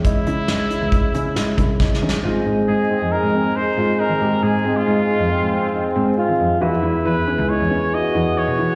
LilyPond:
<<
  \new Staff \with { instrumentName = "Trumpet" } { \time 5/4 \key des \lydian \tempo 4 = 137 fes'1 r4 | r4 aes'4 bes'4 c''4 bes'4 | aes'8. f'2. r4 r16 | r4 b'4 des''4 ees''4 des''4 | }
  \new Staff \with { instrumentName = "Flugelhorn" } { \time 5/4 \key des \lydian r1 r4 | aes1~ aes4~ | aes2 c'2 f'4 | e'2~ e'8 r8 ges'2 | }
  \new Staff \with { instrumentName = "Grand piano" } { \time 5/4 \key des \lydian ees'8 fes'8 ees'8 fes'8 ees'8 des'8 ees'8 fes'8 ees'8 des'8 | f'8 ees'8 ees'8 c'8 ees'8 c'8 ees'8 f'8 ees'8 g'8 | aes'8 c'8 ees'8 ees'8 ees'8 c'8 ees'8 c'8 c'8 ees'8 | ges'8 e'8 e'8 des'8 ees'8 des'8 ees'8 e'8 ees'8 e'8 | }
  \new Staff \with { instrumentName = "Tonewheel organ" } { \time 5/4 \key des \lydian <aes des' fes'>1~ <aes des' fes'>4 | <c' ees' aes'>1~ <c' ees' aes'>4~ | <c' ees' aes'>1~ <c' ees' aes'>4 | <b e' gis'>1~ <b e' gis'>4 | }
  \new Staff \with { instrumentName = "Cello" } { \clef bass \time 5/4 \key des \lydian aes,8 des8 des,8. des,8 r16 des8 aes,8 c,16 r16 des16 r16 ees16 r16 | aes,8 aes,8 aes,8. f,8 aes,8 r8. aes,8 r16 ees16 aes,16 r16 | aes,8 aes,8 aes,8. f,8 aes,8 r8. aes,8 r16 ees16 f,16 r16 | e,8 e,8 e,8. des,8 e,8 r8. e,8 r16 b,16 e16 r16 | }
  \new DrumStaff \with { instrumentName = "Drums" } \drummode { \time 5/4 <hh bd>8 hh8 <hh sn>8 hh8 <hh bd>8 hh8 <hh sn>8 <hh bd>8 \tuplet 3/2 { <bd sn>8 sn8 sn8 } | r4 r4 r4 r4 r4 | r4 r4 r4 r4 r4 | r4 r4 r4 r4 r4 | }
>>